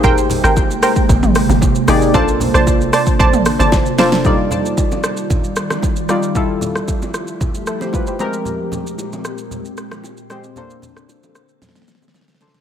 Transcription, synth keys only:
\new Staff \with { instrumentName = "Synth keys" } { \time 4/4 \key ees \major \tempo 4 = 114 << { r1 | r1 | r1 | r2 r8 <e' a'>16 <g' c''>16 <f' ces''>16 <g' c''>8 r16 |
r1 | r1 | } \\ { <bes ees' g' aes' c''>4 r2 r8 <bes ees' g' aes' d''>8 | <bes d' f' a' c''>4. r2 <bes d' f' a' c''>8 | <g ees' f' d''>4. r2 <g ees' f' d''>8 | <g e' f' a'>4. r2 <aes c' g' bes'>8~ |
<aes c' g' bes'>4 r2 r8 <aes c' g' c''>8 | <bes d' a' c''>4. r2 <bes d' a' c''>8 | } >> }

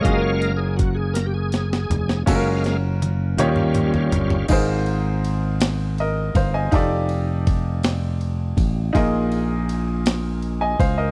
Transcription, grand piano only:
\new Staff \with { instrumentName = "Grand piano" } { \time 6/8 \key fis \major \tempo 4. = 54 << { r2. | r4. dis4. | \key aes \major aes,4. r8 <bes' ees''>8 <c'' f''>16 <ees'' aes''>16~ | <ees'' aes''>16 r2 r8. |
bes,4. r8. <ees'' aes''>16 <c'' f''>16 <bes' ees''>16 | } \\ { <cis' eis' fis' gis' ais'>2. | <cis' eis' fis' a' ais'>4. <dis' eis' g' cis''>4. | <ees' f' aes' bes' c''>2. | <ees' f' g' a' d''>2. |
<ees' f' aes' bes' ees''>2. | } >> }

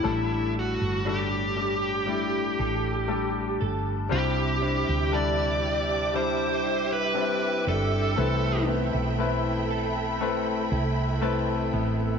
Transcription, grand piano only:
<<
  \new Staff \with { instrumentName = "Grand piano" } { \time 4/4 \key c \lydian \tempo 4 = 59 <g a d' a'>4 <g a d' a'>8 <g a d' a'>8 <g a d' e'>4 <g a d' a'>4 | <g d' e' c''>8 <g d' e' c''>8 <g d' e' a'>4 <g d' e' c''>4 <g c' d' e'>4 | <a c' e' b'>8 <a c' e' b'>8 <a c' e' b'>4 <a c' e' b'>4 <a c' e' b'>4 | }
  \new Staff \with { instrumentName = "Grand piano" } { \clef bass \time 4/4 \key c \lydian a,4. r2 r8 | c4. r2 r8 | e4. r2 r8 | }
>>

